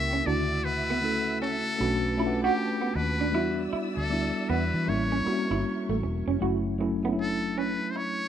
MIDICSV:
0, 0, Header, 1, 8, 480
1, 0, Start_track
1, 0, Tempo, 769231
1, 155, Time_signature, 4, 2, 24, 8
1, 5168, End_track
2, 0, Start_track
2, 0, Title_t, "String section"
2, 0, Program_c, 0, 48
2, 0, Note_on_c, 0, 58, 76
2, 0, Note_on_c, 0, 79, 73
2, 0, Note_on_c, 0, 85, 90
2, 133, Note_off_c, 0, 58, 0
2, 133, Note_off_c, 0, 85, 0
2, 134, Note_off_c, 0, 79, 0
2, 154, Note_on_c, 0, 88, 83
2, 156, Note_on_c, 0, 76, 76
2, 157, Note_on_c, 0, 78, 69
2, 1105, Note_off_c, 0, 88, 0
2, 1106, Note_off_c, 0, 76, 0
2, 1106, Note_off_c, 0, 78, 0
2, 1114, Note_on_c, 0, 71, 70
2, 1115, Note_on_c, 0, 81, 58
2, 1115, Note_on_c, 0, 86, 72
2, 2065, Note_off_c, 0, 71, 0
2, 2065, Note_off_c, 0, 86, 0
2, 2066, Note_off_c, 0, 81, 0
2, 2072, Note_on_c, 0, 74, 78
2, 2072, Note_on_c, 0, 76, 76
2, 2073, Note_on_c, 0, 88, 88
2, 3024, Note_off_c, 0, 74, 0
2, 3025, Note_off_c, 0, 88, 0
2, 3033, Note_on_c, 0, 70, 62
2, 3033, Note_on_c, 0, 85, 73
2, 3975, Note_off_c, 0, 76, 0
2, 3985, Note_off_c, 0, 70, 0
2, 3985, Note_off_c, 0, 85, 0
2, 5168, End_track
3, 0, Start_track
3, 0, Title_t, "Muted trumpet"
3, 0, Program_c, 1, 59
3, 0, Note_on_c, 1, 76, 106
3, 163, Note_on_c, 1, 74, 100
3, 173, Note_off_c, 1, 76, 0
3, 401, Note_on_c, 1, 71, 106
3, 411, Note_off_c, 1, 74, 0
3, 878, Note_off_c, 1, 71, 0
3, 884, Note_on_c, 1, 69, 101
3, 1486, Note_off_c, 1, 69, 0
3, 1514, Note_on_c, 1, 67, 94
3, 1844, Note_on_c, 1, 71, 97
3, 1853, Note_off_c, 1, 67, 0
3, 2284, Note_off_c, 1, 71, 0
3, 2475, Note_on_c, 1, 69, 97
3, 2805, Note_on_c, 1, 71, 88
3, 2815, Note_off_c, 1, 69, 0
3, 3051, Note_on_c, 1, 73, 92
3, 3060, Note_off_c, 1, 71, 0
3, 3763, Note_off_c, 1, 73, 0
3, 4498, Note_on_c, 1, 69, 96
3, 4732, Note_on_c, 1, 71, 90
3, 4742, Note_off_c, 1, 69, 0
3, 4932, Note_on_c, 1, 72, 78
3, 4941, Note_off_c, 1, 71, 0
3, 4975, Note_on_c, 1, 73, 110
3, 4984, Note_off_c, 1, 72, 0
3, 5168, Note_off_c, 1, 73, 0
3, 5168, End_track
4, 0, Start_track
4, 0, Title_t, "Clean electric guitar"
4, 0, Program_c, 2, 27
4, 81, Note_on_c, 2, 61, 70
4, 127, Note_off_c, 2, 61, 0
4, 169, Note_on_c, 2, 62, 74
4, 250, Note_off_c, 2, 62, 0
4, 563, Note_on_c, 2, 59, 69
4, 608, Note_off_c, 2, 59, 0
4, 887, Note_on_c, 2, 61, 68
4, 968, Note_off_c, 2, 61, 0
4, 1369, Note_on_c, 2, 64, 69
4, 1450, Note_off_c, 2, 64, 0
4, 1523, Note_on_c, 2, 66, 75
4, 1568, Note_off_c, 2, 66, 0
4, 1756, Note_on_c, 2, 59, 56
4, 1803, Note_off_c, 2, 59, 0
4, 2002, Note_on_c, 2, 62, 64
4, 2047, Note_off_c, 2, 62, 0
4, 2087, Note_on_c, 2, 64, 81
4, 2168, Note_off_c, 2, 64, 0
4, 2325, Note_on_c, 2, 64, 67
4, 2407, Note_off_c, 2, 64, 0
4, 2806, Note_on_c, 2, 59, 68
4, 2887, Note_off_c, 2, 59, 0
4, 3195, Note_on_c, 2, 61, 74
4, 3242, Note_off_c, 2, 61, 0
4, 3438, Note_on_c, 2, 64, 63
4, 3485, Note_off_c, 2, 64, 0
4, 3679, Note_on_c, 2, 57, 58
4, 3725, Note_off_c, 2, 57, 0
4, 3916, Note_on_c, 2, 61, 65
4, 3963, Note_off_c, 2, 61, 0
4, 4005, Note_on_c, 2, 66, 71
4, 4087, Note_off_c, 2, 66, 0
4, 4399, Note_on_c, 2, 59, 68
4, 4445, Note_off_c, 2, 59, 0
4, 4728, Note_on_c, 2, 61, 66
4, 4809, Note_off_c, 2, 61, 0
4, 5168, End_track
5, 0, Start_track
5, 0, Title_t, "Tine electric piano"
5, 0, Program_c, 3, 4
5, 0, Control_c, 3, 64, 127
5, 0, Note_on_c, 3, 58, 89
5, 0, Note_on_c, 3, 61, 77
5, 0, Note_on_c, 3, 64, 84
5, 0, Note_on_c, 3, 70, 96
5, 81, Note_off_c, 3, 58, 0
5, 84, Note_off_c, 3, 61, 0
5, 87, Note_off_c, 3, 64, 0
5, 90, Note_off_c, 3, 70, 0
5, 152, Note_on_c, 3, 57, 67
5, 159, Note_on_c, 3, 49, 62
5, 164, Note_on_c, 3, 64, 62
5, 165, Control_c, 3, 64, 0
5, 169, Note_on_c, 3, 66, 73
5, 272, Control_c, 3, 64, 127
5, 584, Note_off_c, 3, 57, 0
5, 587, Note_off_c, 3, 49, 0
5, 590, Note_off_c, 3, 64, 0
5, 593, Note_off_c, 3, 66, 0
5, 636, Note_on_c, 3, 57, 67
5, 642, Note_on_c, 3, 61, 58
5, 648, Note_on_c, 3, 64, 59
5, 655, Note_on_c, 3, 69, 67
5, 1107, Note_off_c, 3, 57, 0
5, 1113, Note_off_c, 3, 61, 0
5, 1115, Note_on_c, 3, 57, 76
5, 1121, Note_on_c, 3, 61, 72
5, 1122, Note_off_c, 3, 64, 0
5, 1123, Control_c, 3, 64, 0
5, 1125, Note_off_c, 3, 69, 0
5, 1125, Note_on_c, 3, 62, 69
5, 1130, Note_on_c, 3, 66, 79
5, 1228, Control_c, 3, 64, 127
5, 1330, Note_off_c, 3, 57, 0
5, 1333, Note_off_c, 3, 61, 0
5, 1335, Note_off_c, 3, 62, 0
5, 1338, Note_off_c, 3, 66, 0
5, 1355, Note_on_c, 3, 57, 71
5, 1358, Note_on_c, 3, 61, 69
5, 1365, Note_on_c, 3, 62, 63
5, 1370, Note_on_c, 3, 65, 65
5, 1412, Note_on_c, 3, 78, 76
5, 1414, Note_off_c, 3, 65, 0
5, 2001, Note_off_c, 3, 57, 0
5, 2002, Note_off_c, 3, 61, 0
5, 2006, Note_off_c, 3, 62, 0
5, 2029, Note_off_c, 3, 78, 0
5, 2073, Note_on_c, 3, 55, 71
5, 2078, Note_on_c, 3, 59, 65
5, 2083, Control_c, 3, 64, 0
5, 2084, Note_on_c, 3, 62, 68
5, 2089, Note_on_c, 3, 66, 75
5, 2186, Control_c, 3, 64, 127
5, 2505, Note_off_c, 3, 55, 0
5, 2507, Note_off_c, 3, 59, 0
5, 2510, Note_off_c, 3, 62, 0
5, 2513, Note_off_c, 3, 66, 0
5, 2557, Note_on_c, 3, 55, 66
5, 2563, Note_on_c, 3, 59, 58
5, 2568, Note_on_c, 3, 62, 58
5, 2575, Note_on_c, 3, 64, 77
5, 3029, Note_off_c, 3, 55, 0
5, 3037, Note_on_c, 3, 55, 77
5, 3039, Note_off_c, 3, 59, 0
5, 3042, Note_off_c, 3, 62, 0
5, 3042, Control_c, 3, 64, 0
5, 3042, Note_on_c, 3, 58, 65
5, 3045, Note_off_c, 3, 64, 0
5, 3047, Note_on_c, 3, 61, 69
5, 3052, Note_on_c, 3, 64, 82
5, 3139, Control_c, 3, 64, 127
5, 3251, Note_off_c, 3, 55, 0
5, 3254, Note_off_c, 3, 58, 0
5, 3256, Note_off_c, 3, 61, 0
5, 3259, Note_off_c, 3, 64, 0
5, 3276, Note_on_c, 3, 55, 68
5, 3283, Note_on_c, 3, 58, 62
5, 3287, Note_on_c, 3, 60, 51
5, 3293, Note_on_c, 3, 66, 73
5, 3328, Note_on_c, 3, 61, 61
5, 3332, Note_off_c, 3, 60, 0
5, 3921, Note_off_c, 3, 55, 0
5, 3925, Note_off_c, 3, 58, 0
5, 3930, Note_off_c, 3, 66, 0
5, 3947, Note_off_c, 3, 61, 0
5, 3993, Note_on_c, 3, 54, 73
5, 3998, Note_on_c, 3, 57, 74
5, 4003, Control_c, 3, 64, 0
5, 4006, Note_on_c, 3, 61, 67
5, 4009, Note_on_c, 3, 64, 88
5, 4099, Control_c, 3, 64, 127
5, 4210, Note_off_c, 3, 54, 0
5, 4212, Note_off_c, 3, 57, 0
5, 4216, Note_off_c, 3, 61, 0
5, 4218, Note_off_c, 3, 64, 0
5, 4235, Note_on_c, 3, 54, 76
5, 4241, Note_on_c, 3, 57, 71
5, 4246, Note_on_c, 3, 61, 69
5, 4253, Note_on_c, 3, 64, 87
5, 4365, Note_off_c, 3, 54, 0
5, 4368, Note_off_c, 3, 57, 0
5, 4371, Note_off_c, 3, 61, 0
5, 4374, Note_off_c, 3, 64, 0
5, 4388, Note_on_c, 3, 54, 67
5, 4394, Note_on_c, 3, 57, 62
5, 4400, Note_on_c, 3, 61, 60
5, 4407, Note_on_c, 3, 62, 61
5, 4427, Note_off_c, 3, 62, 0
5, 4447, Note_on_c, 3, 64, 78
5, 5168, Note_off_c, 3, 54, 0
5, 5168, Note_off_c, 3, 57, 0
5, 5168, Note_off_c, 3, 61, 0
5, 5168, Note_off_c, 3, 64, 0
5, 5168, End_track
6, 0, Start_track
6, 0, Title_t, "Fingered electric bass"
6, 0, Program_c, 4, 33
6, 0, Note_on_c, 4, 37, 82
6, 132, Note_off_c, 4, 37, 0
6, 165, Note_on_c, 4, 38, 91
6, 1007, Note_off_c, 4, 38, 0
6, 1126, Note_on_c, 4, 35, 89
6, 1543, Note_off_c, 4, 35, 0
6, 1843, Note_on_c, 4, 39, 85
6, 2085, Note_off_c, 4, 39, 0
6, 2085, Note_on_c, 4, 40, 103
6, 2292, Note_off_c, 4, 40, 0
6, 2477, Note_on_c, 4, 38, 77
6, 2684, Note_off_c, 4, 38, 0
6, 2805, Note_on_c, 4, 40, 92
6, 2934, Note_off_c, 4, 40, 0
6, 2957, Note_on_c, 4, 52, 95
6, 3043, Note_on_c, 4, 33, 87
6, 3053, Note_off_c, 4, 52, 0
6, 3251, Note_off_c, 4, 33, 0
6, 3436, Note_on_c, 4, 31, 86
6, 3510, Note_off_c, 4, 31, 0
6, 3676, Note_on_c, 4, 33, 82
6, 3750, Note_off_c, 4, 33, 0
6, 3762, Note_on_c, 4, 28, 78
6, 3892, Note_off_c, 4, 28, 0
6, 3914, Note_on_c, 4, 29, 86
6, 3989, Note_off_c, 4, 29, 0
6, 4003, Note_on_c, 4, 30, 93
6, 4846, Note_off_c, 4, 30, 0
6, 5168, End_track
7, 0, Start_track
7, 0, Title_t, "Muted clean electric guitar strokes"
7, 410, Note_on_c, 9, 29, 41
7, 472, Note_off_c, 9, 29, 0
7, 1128, Note_on_c, 9, 29, 46
7, 1190, Note_off_c, 9, 29, 0
7, 1849, Note_on_c, 9, 29, 42
7, 1911, Note_off_c, 9, 29, 0
7, 3286, Note_on_c, 9, 29, 41
7, 3348, Note_off_c, 9, 29, 0
7, 3765, Note_on_c, 9, 29, 42
7, 3827, Note_off_c, 9, 29, 0
7, 4247, Note_on_c, 9, 29, 41
7, 4309, Note_off_c, 9, 29, 0
7, 4965, Note_on_c, 9, 29, 46
7, 5028, Note_off_c, 9, 29, 0
7, 5168, End_track
8, 0, Start_track
8, 0, Title_t, "Muted fingered electric bass strokes"
8, 2327, Note_on_c, 9, 29, 40
8, 2389, Note_off_c, 9, 29, 0
8, 3286, Note_on_c, 9, 29, 41
8, 3348, Note_off_c, 9, 29, 0
8, 5168, End_track
0, 0, End_of_file